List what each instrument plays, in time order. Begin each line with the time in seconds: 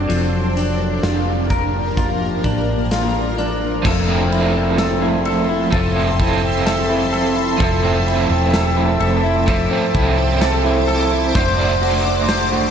Already playing: clean electric guitar D4 F#4 C5, ambient pad D4
0.09 fingered electric bass F1, clean electric guitar F3, ambient pad F3 A#3 G4 A#4, closed hi-hat
0.57 clean electric guitar D4, closed hi-hat
1.03 fingered electric bass F1, clean electric guitar F4, snare, closed hi-hat
1.50 clean electric guitar A#4, kick, closed hi-hat
1.97 ambient pad F4, clean electric guitar F4, kick, closed hi-hat
2.44 fingered electric bass A1, clean electric guitar D4, kick, closed hi-hat
2.91 clean electric guitar F4, snare, closed hi-hat
3.38 clean electric guitar D4, closed hi-hat
3.82 fingered electric bass F1, overdriven electric guitar F3 A3, clean electric guitar F3, ambient pad A4 E5 A5 C6, synth texture C5, kick, crash
3.86 overdriven electric guitar C4 E4, clean electric guitar A4
3.90 overdriven electric guitar A4
4.09 clean electric guitar C4
4.32 clean electric guitar E4, ride
4.56 clean electric guitar C4
4.78 clean electric guitar A4, snare, ride, tambourine
5.02 clean electric guitar E4
5.25 clean electric guitar A4, ride
5.49 clean electric guitar E4
5.70 fingered electric bass F1, clean electric guitar F3 A4, overdriven electric guitar A3 C4 E4, kick, ride
5.76 overdriven electric guitar A4
5.96 clean electric guitar C4
6.18 clean electric guitar E4, overdriven electric guitar E4 A4, kick, ride
6.23 overdriven electric guitar C4
6.43 clean electric guitar C4
6.66 clean electric guitar A4, snare, ride, tambourine
6.90 clean electric guitar E4
7.13 clean electric guitar A4, ride
7.36 clean electric guitar E4
7.57 fingered electric bass F1, overdriven electric guitar F3 A3, clean electric guitar F3 A4, ambient pad C5 D6, kick, ride
7.62 overdriven electric guitar C4 E4 A4
7.84 clean electric guitar C4
8.07 clean electric guitar E4, ride
8.30 fingered electric bass E1, clean electric guitar C4
8.53 clean electric guitar A4, snare, ride, tambourine
8.77 clean electric guitar E4
9.00 fingered electric bass F1, clean electric guitar A4, ride
9.24 clean electric guitar E4
9.46 clean electric guitar F3 A4, overdriven electric guitar A3 C4 E4, kick, ride
9.51 overdriven electric guitar A4
9.71 clean electric guitar C4
9.93 fingered electric bass C2, clean electric guitar E4, overdriven electric guitar E4 A4, kick, ride
9.98 overdriven electric guitar C4
10.18 clean electric guitar C4
10.41 clean electric guitar A4, snare, ride, tambourine
10.64 clean electric guitar E4
10.88 clean electric guitar A4, ride
11.11 clean electric guitar E4
11.35 fingered electric bass F1, overdriven electric guitar A3 D4, clean electric guitar C5, synth texture C5, ambient pad F#5 A5, kick, ride
11.39 overdriven electric guitar F#4 C5
11.58 clean electric guitar D4
11.81 clean electric guitar F#4, ride
12.05 clean electric guitar D4
12.28 clean electric guitar C5, snare, ride, tambourine
12.52 clean electric guitar F#4